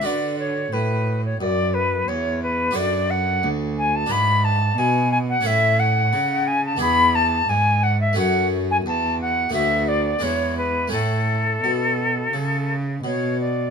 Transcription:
X:1
M:4/4
L:1/16
Q:1/4=88
K:Bm
V:1 name="Flute"
d2 c2 B3 c d2 B2 c2 B2 | [K:A] d2 f4 g a b2 a2 g2 g f | e2 f4 g a b2 a2 g2 f e | f3 g a2 f2 e2 d2 c2 B2 |
A12 c2 d2 |]
V:2 name="Harpsichord"
[DFB]16 | [K:A] [DFA]8 [DEB]8 | [CEA]8 [B,DG]8 | [A,CF]8 [A,B,F]4 [G,DE]4 |
[A,CE]16 |]
V:3 name="Harpsichord" clef=bass
D,4 A,,4 F,,4 E,,4 | [K:A] F,,4 D,,4 G,,4 B,,4 | A,,4 C,4 E,,4 G,,4 | F,,4 E,,4 D,,4 E,,4 |
A,,4 B,,4 C,4 B,,4 |]
V:4 name="Cello" clef=bass
D,4 A,,4 F,,4 E,,4 | [K:A] F,,4 D,,4 G,,4 B,,4 | A,,4 C,4 E,,4 G,,4 | F,,4 E,,4 D,,4 E,,4 |
A,,4 B,,4 C,4 B,,4 |]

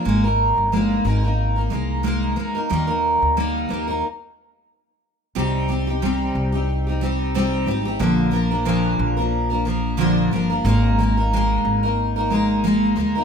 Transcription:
X:1
M:4/4
L:1/16
Q:"Swing 16ths" 1/4=91
K:Cm
V:1 name="Steel-string acoustic guitar"
[A,B,EB] [B,EB]3 [A,B,EB]2 [A,B,EB] [B,EB]2 [B,EB] [A,B,EB]2 [A,B,EB]2 [A,B,EB] [B,EB] | [E,G,B,EB] [B,EB]3 [G,B,EB]2 [G,B,EB] [B,EB] z8 | [C,G,CEG]2 [G,CEG] [CEG] [C,G,CEG]3 [CEG]2 [CEG] [G,CEG]2 [C,G,CEG]2 [G,CEG] [CEG] | [B,,D,F,B,DB]2 [F,B,DB] [F,B,DB] [B,,D,F,B,DB]3 [F,B,DB]2 [F,B,DB] [F,B,DB]2 [B,,D,F,B,DB]2 [F,B,DB] [F,B,DB] |
[A,B,EB]2 [A,B,EB] [B,EB] [A,B,EB]3 [B,EB]2 [B,EB] [A,B,EB]2 [A,B,EB]2 [A,B,EB] [B,EB] |]
V:2 name="Upright bass" clef=bass
A,,,3 G,,,3 A,,,4 C,,4 z2 | E,,3 D,,3 E,,2 z8 | C,,6 C,,8 A,,,2 | B,,,6 B,,,8 G,,,2 |
A,,,6 A,,,8 D,,2 |]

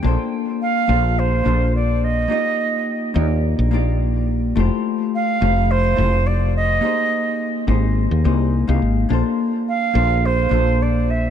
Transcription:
X:1
M:4/4
L:1/16
Q:1/4=106
K:Bb
V:1 name="Flute"
z4 f4 c4 d2 e2- | e6 z8 z2 | z4 f4 c4 d2 e2- | e6 z8 z2 |
z4 f4 c4 d2 =e2 |]
V:2 name="Hollow-body jazz guitar"
[B,DFAc]6 [B,DFAc]4 [B,DFAc]6 | [B,EFGe]6 [B,EFGd]4 [B,EFGd]6 | [A,=EFGc]6 [A,EFGc]4 [A,EFGc]6 | [B,EG_Ac]6 [B,EGAc]4 [B,EGAc]3 [B,EGAf]3 |
[B,DFAc]6 [B,DFAc]4 [B,DFAc]6 |]
V:3 name="Fretless electric bass" clef=bass
B,,, z4 z B,,,4 B,,,6 | z6 E,,3 B,,,6- B,,, | F,,, z4 z F,,,4 F,,,6 | z6 _A,,,3 E,, C,,3 C,, A,,,2 |
B,,, z4 z B,,,4 B,,,6 |]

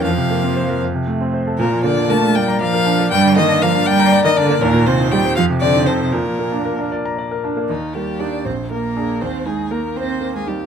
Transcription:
X:1
M:6/8
L:1/16
Q:3/8=79
K:Bb
V:1 name="Violin"
f6 z6 | B2 d2 a2 g2 f4 | g2 e2 f2 g3 e d2 | B2 c2 g2 f2 d2 c2 |
B6 z6 | [K:Eb] E2 G2 d2 c2 B4 | c2 A2 B2 c3 A G2 |]
V:2 name="Grand piano"
F,, C, B, C c B F,, C, A, C c A | B,, F, B, D B D d b d B D B, | G,, D, B, D B D d b d B D B, | E,, B,, C E G c F,, C, C E A c |
B,, F, B, D B D d b d B D B, | [K:Eb] E,,2 B,2 [EG]2 B,,,2 B,2 [DA]2 | E,,2 E2 B,2 C2 B,2 E2 |]
V:3 name="Cello" clef=bass
F,6 z6 | B,,2 D,2 A,2 G,2 F,4 | G,2 E,2 F,2 G,3 E, D,2 | B,,2 C,2 G,2 F,2 D,2 C,2 |
B,,6 z6 | [K:Eb] E,2 G,2 D2 C2 B,4 | C2 A,2 B,2 C3 A, G,2 |]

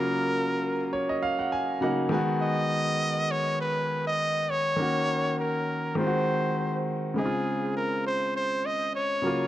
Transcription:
X:1
M:4/4
L:1/16
Q:"Swing 16ths" 1/4=101
K:Db
V:1 name="Trumpet"
B6 z8 z2 | e6 d2 _c3 e3 d2- | d4 B4 c6 z2 | A4 B2 c2 c2 e2 d4 |]
V:2 name="Grand piano"
z6 d e f g a2 g2 a2 | z16 | z16 | z16 |]
V:3 name="Grand piano"
[D,G,B,F]12 [D,G,B,E]2 [E,A,_CG]2- | [E,A,_CG]12- [E,A,CG]2 z2 | [E,B,DG]8 [E,A,CFG]8 | [D,A,CEF]12- [D,A,CEF]2 [D,G,B,F]2 |]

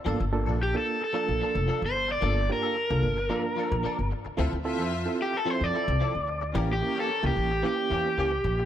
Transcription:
X:1
M:4/4
L:1/16
Q:1/4=111
K:Gdor
V:1 name="Overdriven electric guitar"
z4 G A2 A6 c2 d- | d2 B12 z2 | z6 G A c d6- d- | d G2 A2 G3 G8 |]
V:2 name="String section"
z16 | z16 | [Fce] z [Fce]4 z8 z2 | [^CGB] z [CGB]4 z8 z2 |]
V:3 name="Reed electric piano"
[B,DFA] z [B,DFA]2 z [B,DFA]2 z [B,DFA]4- [B,DFA] z3 | [B,DFA] z [B,DFG]2 z [B,DFA]2 z [B,DFB]4- [B,DFB] z3 | [CEFA] z [CEFA]2 z [CEFA]2 z [CEFA]4- [CEFA] z3 | [B,^CEG] z [B,CEG]2 z [B,CEG]2 z [B,CEG]4- [B,CEG] z3 |]
V:4 name="Clean electric guitar"
[F,B,DA] z2 [B,DA] z4 [F,B,DA] z [F,B,DA] z [F,B,DA] z3 | [F,B,DA] z2 [B,DA] z4 [F,B,DA] z [F,B,DA] z [F,B,DA] z3 | [F,CEA] z2 [CEA] z4 [F,CEA] z [F,CEA] z [F,CEA] z3 | [E,B,^CG] z2 [B,CG] z4 [E,B,CG] z [E,B,CG] z [E,B,CG] z3 |]
V:5 name="Upright bass" clef=bass
G,,, G,,,2 B,,,2 z4 B,,, z F,,, z G,,,3 | G,,,2 z3 C,, G,,,2 z3 B,,, z G,,, z2 | D,, D,,2 F,,2 z4 F,, z C,, z D,,3 | A,,,2 z3 ^C,, A,,,2 z2 E,,2 C,,2 B,,,2 |]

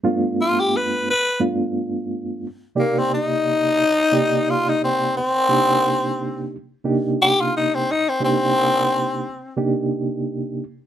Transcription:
X:1
M:4/4
L:1/16
Q:"Swing 16ths" 1/4=88
K:Cdor
V:1 name="Tenor saxophone"
z2 F G =B2 B2 z8 | B, C E8 F E C2 C2- | C6 z4 G F E C E C | C8 z8 |]
V:2 name="Reed electric piano"
[G,,A,=B,DF]6 z2 [G,,A,B,DF]6 z2 | [C,B,EGd]6 z2 [C,B,EGd]6 z2 | [C,B,DEG]6 z2 [C,B,DEG]6 z2 | [C,B,DEG]6 z2 [C,B,DEG]6 z2 |]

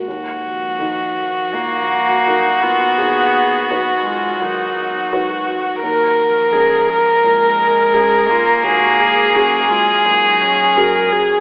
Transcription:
X:1
M:4/4
L:1/8
Q:1/4=85
K:Ebm
V:1 name="Violin"
G8- | G8 | B8 | A8 |]
V:2 name="Viola"
z4 G2 E F | A2 ^F =F ^D2 ^F2 | B2 A B3 A F | G A G F E D B A |]
V:3 name="Felt piano"
E,,2 [E,EB]2 B,,2 [G,EB]2 | ^D,,2 [^F,^D=B]2 ^D,2 [F,DB]2 | E,,2 [A,DB]2 B,,2 [A,DB]2 | E,,2 [G,DA]2 B,,2 [G,DA]2 |]
V:4 name="Cello" clef=bass
z F,3 B,3 C- | C3 A, ^F,3 z | z F,3 A,3 B,- | B,3 A, G,3 z |]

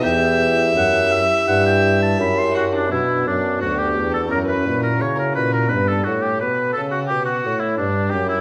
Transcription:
X:1
M:4/4
L:1/16
Q:1/4=86
K:Em
V:1 name="Oboe"
g4 f2 e2 f g2 a b c' F D | [K:Bm] E2 D2 F G2 A ^A B2 A c A B A | B A F G B2 A F G F2 E D2 G E |]
V:2 name="Violin"
e12- e2 F D | [K:Bm] E2 D2 F G2 A ^A B2 A c A B A | B A F G B2 A F G F2 E D2 G E |]
V:3 name="Pipe organ"
[B,EG]16 | [K:Bm] [B,DF]8 [CEF]8 | [B,D]2 z12 z2 |]
V:4 name="Pipe organ" clef=bass
E,,4 F,,2 z2 G,,4 F,,4 | [K:Bm] B,,2 F,,2 D,,2 E,,2 F,,2 ^A,,2 C,2 A,,2 | G,,2 A,,2 B,,2 C,2 B,,2 A,,2 G,,2 F,,2 |]
V:5 name="Bassoon" clef=bass
E,,4 F,,2 z2 G,,4 F,,4 | [K:Bm] B,,2 F,,2 D,,2 E,,2 F,,2 ^A,,2 C,2 A,,2 | G,,2 A,,2 B,,2 C,2 B,,2 A,,2 G,,2 F,,2 |]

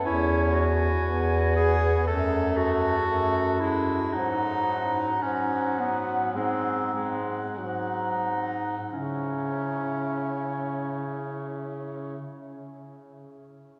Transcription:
X:1
M:4/4
L:1/8
Q:1/4=52
K:C#m
V:1 name="Soprano saxophone"
g g2 g a a2 a | f f2 f f f2 f | E8 |]
V:2 name="Clarinet"
E F2 G A F2 E | D2 C B, ^B, z D2 | C8 |]
V:3 name="Tenor saxophone" clef=bass
C z B,2 A,2 A, G, | F,2 F,2 G, G, F, z | C8 |]
V:4 name="Bass clarinet" clef=bass
E,,2 E,,2 F,,2 F,,2 | G,,2 G,,2 G,,2 G,,2 | C,8 |]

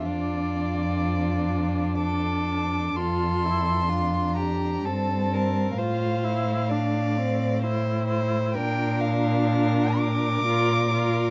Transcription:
X:1
M:3/4
L:1/8
Q:1/4=64
K:F
V:1 name="Violin"
d4 d'2 | c'3 b a2 | f4 z2 | g f2 d'3 |]
V:2 name="Violin"
F4 A2 | A2 F G A B | c2 d2 c c | B2 B4 |]
V:3 name="Viola"
D6 | F E D2 C2 | F E D C E2 | D4 F F |]
V:4 name="Cello" clef=bass
F,,6 | F,,4 G,,2 | A,,6 | B,,4 B,,2 |]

